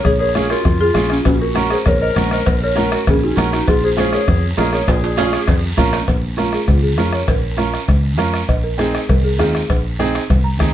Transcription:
0.04 A#1 G#4 C#5, bombo low, bombo rim, high conga, long guiro
0.19 G#4 A#4 C#5
0.35 C#4 F4 G#4, bombo rim, high conga, short guiro
0.50 F4 F#4 A#4, bombo rim, short guiro
0.65 F2, bombo low, bombo rim, high conga, low conga, long guiro
0.80 F4 G#4
0.94 A#1 C#4 F4 G#4, bombo rim, high conga, short guiro
1.10 C#4 F4, bombo rim, short guiro
1.25 A#1 C#4 F#4, bombo low, bombo rim, cowbell, high conga, long guiro
1.40 F#4 A#4
1.55 C#4 F#4 A#4, bombo rim, high conga, short guiro
1.70 G#4 C5, bombo rim, short guiro
1.85 A#1 A#4 C#5, bombo low, bombo rim, cowbell, high conga, low conga, long guiro
2.00 A#4 C5 D#5
2.16 A#1 C#4 F#4 A#4, bombo rim, high conga, low conga, short guiro
2.31 A#4 C5 D#5, bombo rim, short guiro
2.46 A#1, bombo low, bombo rim, cowbell, high conga, long guiro
2.62 A#4 C#5
2.75 C#4 F#4 A#4, bombo rim, high conga, short guiro
2.92 F#4 A#4, bombo rim, short guiro
3.07 A#1 C#4 G#4, bombo low, bombo rim, cowbell, high conga, low conga, long guiro
3.23 C#4 D#4 F#4
3.36 A#1 C#4 F#4 A#4, bombo rim, high conga, short guiro
3.53 D#4 F#4, bombo rim, short guiro
3.68 A#1 F4 G#4, bombo low, bombo rim, cowbell, high conga, long guiro
3.84 G#4 C5
3.97 C#4 F4 G#4 C5, bombo rim, high conga, short guiro
4.13 G#4 A#4 C#5, bombo rim, short guiro
4.28 F2, bombo low, bombo rim, cowbell, high conga, low conga, long guiro
4.57 A#1 C#4 F4 G#4 A#4 D#5, bombo rim, high conga, low timbale, short guiro
4.73 G#4 A#4 C#5, bombo rim, short guiro
4.88 A#1, bombo low, bombo rim, cowbell, high conga, high timbale, long guiro
5.04 high timbale
5.17 C#4 F4 G#4, bombo rim, high conga, high timbale, short guiro
5.33 bombo rim, short guiro
5.47 F2, bombo low, bombo rim, cowbell, high conga, low conga, low timbale, long guiro
5.77 A#1 C#4 F4 A#4, bombo low, bombo rim, high conga, low timbale, short guiro
5.93 bombo rim, low timbale, short guiro
6.08 A#1, bombo low, bombo rim, cowbell, high conga, low conga, long guiro
6.37 C#4 F4 A#4, bombo rim, high conga, short guiro
6.53 G#4, bombo rim, short guiro
6.68 C#2 F4, bombo low, bombo rim, cowbell, high conga, low conga, long guiro
6.83 G#4
6.98 F2 C#4 F4 A#4, bombo rim, high conga, short guiro
7.13 C#5, bombo rim, short guiro
7.28 A#1 A#4, bombo low, bombo rim, cowbell, high conga, low conga, long guiro
7.57 C#4 F4 A#4, bombo rim, high conga, short guiro
7.74 bombo rim, short guiro
7.88 C#2, bombo low, bombo rim, cowbell, high conga, low conga, long guiro
8.17 F2 C#4 F4 A#4, bombo rim, high conga, short guiro
8.34 bombo rim, short guiro
8.49 A#1 D#5, bombo low, bombo rim, cowbell, high conga, long guiro
8.64 A#4
8.78 C4 D#4 G#4, bombo rim, high conga, short guiro
8.94 D#5, bombo rim, short guiro
9.09 C2 A#4, bombo low, bombo rim, cowbell, high conga, low conga, long guiro
9.24 G#4
9.39 D#2 C4 D#4 F4 G#4, bombo rim, high conga, low conga, low timbale, short guiro
9.55 bombo rim, short guiro
9.70 A#1, bombo low, bombo rim, cowbell, high conga, long guiro
9.99 C4 D#4 G#4, bombo rim, high conga, short guiro
10.15 bombo rim, short guiro
10.30 C2, bombo low, bombo rim, cowbell, high conga, low conga, long guiro
10.44 A#5
10.59 D#2 C4 D#4 G#4, bombo low, bombo rim, high conga, short guiro

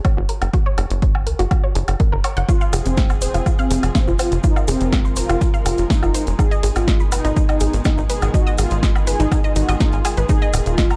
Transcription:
0.05 C#5, kick, closed hi-hat, low woodblock
0.17 F#1 F#4
0.29 A#4, closed hi-hat
0.42 F#1, closed hi-hat, low woodblock
0.53 F#4, kick, closed hi-hat
0.66 C#5
0.78 F#1 G#4, closed hi-hat, low woodblock
0.90 F#1, closed hi-hat
1.02 C#5, kick, closed hi-hat
1.15 G#5, low woodblock
1.27 C#2 A#4, closed hi-hat
1.39 F#1 F#4, closed hi-hat
1.51 F#4, kick, closed hi-hat, low woodblock
1.64 C#5
1.75 F#1 G#4, closed hi-hat
1.88 F#1, closed hi-hat, low woodblock
2.00 A#4, kick, closed hi-hat
2.12 F#1 A#4
2.24 C#5, closed hi-hat, low woodblock
2.37 F#1 F#5, closed hi-hat
2.48 C3 F3 G#3 F4 G#4, kick, closed hi-hat, cabasa
2.61 F5, cabasa
2.73 F1 G#4, open hi-hat, cabasa, low woodblock
2.85 F1 C4, closed hi-hat, cabasa
2.97 F5, kick, snare, closed hi-hat, cabasa
3.10 C6, cabasa, low woodblock
3.21 D#1 C4 C5, open hi-hat, cabasa
3.34 F1 F4, closed hi-hat, cabasa
3.46 F4, kick, closed hi-hat, cabasa, low woodblock
3.59 C4 F5, cabasa
3.71 F1 G#4, open hi-hat, cabasa
3.83 F1, closed hi-hat, cabasa, low woodblock
3.95 C4 F5, kick, snare, closed hi-hat, cabasa
4.07 F1 F4, cabasa
4.19 F4 C5, open hi-hat, cabasa, low woodblock
4.32 F1, closed hi-hat, cabasa
4.44 D#4 F4 A#4, kick, closed hi-hat, cabasa
4.56 F5, cabasa, low woodblock
4.68 F1 C4 G#4, open hi-hat, cabasa
4.81 F1, closed hi-hat, cabasa
4.92 F5, kick, snare, closed hi-hat, cabasa, low woodblock
5.05 C6, cabasa
5.16 D#1 F4 C5, open hi-hat, cabasa
5.29 F1 F4, closed hi-hat, cabasa, low woodblock
5.41 F4, kick, snare, closed hi-hat, cabasa
5.54 F5, cabasa
5.66 F1 F4 G#4, open hi-hat, cabasa, low woodblock
5.78 F1, closed hi-hat, cabasa
5.90 D#4 F5, kick, snare, closed hi-hat, cabasa
6.03 F1 F4, cabasa, low woodblock
6.14 C5, open hi-hat, cabasa
6.27 F1, closed hi-hat, cabasa
6.39 B2 D#3 D#4 G#4, kick, closed hi-hat, cabasa, low woodblock
6.51 D#5, cabasa
6.63 G#1 G#4, open hi-hat, cabasa
6.76 G#1 F4, closed hi-hat, cabasa, low woodblock
6.88 D#5, kick, snare, closed hi-hat, cabasa
7.00 B5, cabasa
7.12 F#1 D#4 B4, open hi-hat, cabasa, low woodblock
7.25 G#1 D#4, closed hi-hat, cabasa
7.36 D#4, kick, closed hi-hat, cabasa
7.49 D#4 D#5, cabasa, low woodblock
7.60 G#1 G#4, open hi-hat, cabasa
7.73 G#1, closed hi-hat, cabasa
7.85 D#4 D#5, kick, snare, closed hi-hat, cabasa, low woodblock
7.98 G#1 D#4, cabasa
8.09 G#4 B4, open hi-hat, cabasa
8.22 G#1, closed hi-hat, cabasa, low woodblock
8.34 D#4 F4 F#4, kick, closed hi-hat, cabasa
8.47 D#5, cabasa
8.58 G#1 F4 G#4, open hi-hat, cabasa, low woodblock
8.70 G#1, closed hi-hat, cabasa
8.83 D#5, kick, snare, closed hi-hat, cabasa
8.95 B5, cabasa, low woodblock
9.07 F#1 G#4 B4, open hi-hat, cabasa
9.20 G#1 D#4, closed hi-hat, cabasa
9.31 D#4, kick, snare, closed hi-hat, cabasa, low woodblock
9.44 D#5, cabasa
9.56 G#1 D#4 F#4, open hi-hat, cabasa
9.69 G#1 D#5, closed hi-hat, cabasa, low woodblock
9.80 D#4 F4, kick, snare, closed hi-hat, cabasa
9.92 G#1 G#5, cabasa
10.05 G#4, open hi-hat, cabasa, low woodblock
10.17 G#1 B4, closed hi-hat, cabasa
10.29 A#2 D#4 G#4, kick, closed hi-hat, cabasa
10.42 D#5, cabasa
10.53 D#1, open hi-hat, cabasa, low woodblock
10.66 D#1 F4, closed hi-hat, cabasa
10.78 D#5, kick, snare, closed hi-hat, cabasa
10.90 A#5, cabasa, low woodblock

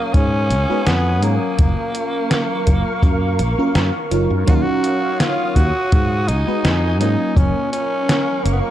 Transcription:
Already playing: F#3 A#3 C#4 D#4 F4 A#4 C#5 D#6
0.14 G#2 C#4 G#5, kick, closed hi-hat
0.50 C#2, closed hi-hat
0.69 G#3 B3 D#4 F#4 B4
0.86 F2 B3, snare, closed hi-hat
1.21 G#2 F#3 A#3 C#4 F4 A#4, closed hi-hat
1.58 F#1 A#4 F5 C#6, kick, closed hi-hat
1.95 closed hi-hat
2.31 snare, closed hi-hat
2.67 F#1, kick, closed hi-hat
3.03 F#2, kick, closed hi-hat
3.39 A#1, closed hi-hat
3.58 F#3 A#3 C#4 F4 A#4
3.75 F#2, snare, closed hi-hat
4.11 F#1 F#3 C#4 D#4 F4 A#4, closed hi-hat
4.30 F#2
4.46 D#2 F#3 C#4 D#4 F#4 A#4 C#5 F5 D#6, kick, closed hi-hat
4.55 F4
4.62 F#4
4.84 closed hi-hat
5.20 F4, snare, closed hi-hat
5.56 D#2 F#4, kick, closed hi-hat
5.92 G#2 G#5, kick, closed hi-hat
6.28 C#2 D#4, closed hi-hat
6.47 G#3 B3 D#4 F#4 B4
6.65 F2, snare, closed hi-hat
6.99 G#2 F#3 A#3 C#4 D#4 F4 A#4, closed hi-hat
7.36 F#1 C#4 A#4 F5 C#6, kick, closed hi-hat
7.72 C#4, closed hi-hat
8.09 snare, closed hi-hat
8.45 F#1 A#3, closed hi-hat
8.52 B3
8.60 A#3

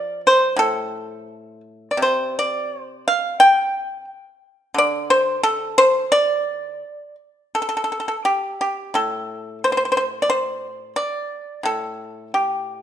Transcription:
Already playing: F3 D5
0.27 C5
0.56 A2 A4
1.91 D5
1.97 C3
2.02 C5
2.39 D5
2.81 C5
3.08 F5
3.40 G5
4.74 D3 D5
5.10 C5
5.43 A4
5.78 C5
6.12 D5
7.55 A4
7.62 A4
7.69 A4
7.77 A4
7.84 A4
7.92 A4
8.00 A4
8.08 A4
8.25 G4
8.61 G4
8.94 A2 A4
9.64 C5
9.72 C5
9.77 C5
9.85 C5
9.92 C5
9.97 C5
10.22 D5
10.30 C5
10.96 D5
11.63 A2 A4
12.34 G4

